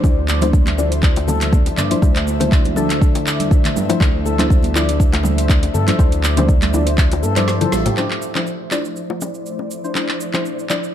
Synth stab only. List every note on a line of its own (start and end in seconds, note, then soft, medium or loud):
0.04 0.24 F3 medium
0.04 0.24 D4 medium
0.04 0.24 E4 medium
0.04 0.24 C5 medium
0.42 0.75 F3 medium
0.42 0.75 D4 medium
0.42 0.75 E4 medium
0.42 0.75 C5 loud
0.78 0.92 F3 loud
0.78 0.92 D4 medium
0.78 0.92 E4 medium
0.78 0.92 D5 loud
1.91 2.01 F3 medium
1.91 2.01 D4 medium
1.91 2.01 E4 medium
1.91 2.01 C5 medium
2.02 2.23 F3 medium
2.02 2.23 D4 medium
2.02 2.23 E4 medium
2.02 2.23 C5 medium
2.40 2.74 F3 medium
2.40 2.74 D4 medium
2.40 2.74 E4 medium
2.40 2.74 C5 loud
2.76 2.90 F3 loud
2.76 2.90 D4 medium
2.76 2.90 E4 medium
2.76 2.90 D5 loud
3.89 3.99 F3 medium
3.89 3.99 D4 medium
3.89 3.99 E4 medium
3.89 3.99 C5 medium
4.01 4.21 F3 medium
4.01 4.21 D4 medium
4.01 4.21 E4 medium
4.01 4.21 C5 medium
4.39 4.72 F3 medium
4.39 4.72 D4 medium
4.39 4.72 E4 medium
4.39 4.72 C5 loud
4.75 4.89 F3 loud
4.75 4.89 D4 medium
4.75 4.89 E4 medium
4.75 4.89 D5 loud
5.88 5.97 F3 medium
5.88 5.97 D4 medium
5.88 5.97 E4 medium
5.88 5.97 C5 medium
5.99 6.19 F3 medium
5.99 6.19 D4 medium
5.99 6.19 E4 medium
5.99 6.19 C5 medium
6.37 6.71 F3 medium
6.37 6.71 D4 medium
6.37 6.71 E4 medium
6.37 6.71 C5 loud
6.73 6.87 F3 loud
6.73 6.87 D4 medium
6.73 6.87 E4 medium
6.73 6.87 D5 loud
7.36 7.58 F3 medium
7.36 7.58 D4 medium
7.36 7.58 E4 medium
7.36 7.58 C5 medium
7.61 7.73 F3 medium
7.61 7.73 D4 medium
7.61 7.73 E4 medium
7.61 7.73 C5 loud
7.97 8.18 F3 medium
7.97 8.18 D4 medium
7.97 8.18 E4 medium
7.97 8.18 C5 medium
8.35 8.69 F3 medium
8.35 8.69 D4 medium
8.35 8.69 E4 medium
8.35 8.69 C5 medium
8.71 8.85 F3 medium
8.71 8.85 D4 medium
8.71 8.85 E4 medium
8.71 8.85 D5 loud
9.84 9.94 F3 medium
9.84 9.94 D4 medium
9.84 9.94 E4 medium
9.84 9.94 C5 medium
9.95 10.16 F3 medium
9.95 10.16 D4 medium
9.95 10.16 E4 medium
9.95 10.16 C5 medium
10.34 10.67 F3 medium
10.34 10.67 D4 medium
10.34 10.67 E4 medium
10.34 10.67 C5 medium
10.70 10.83 F3 medium
10.70 10.83 D4 medium
10.70 10.83 E4 medium
10.70 10.83 D5 loud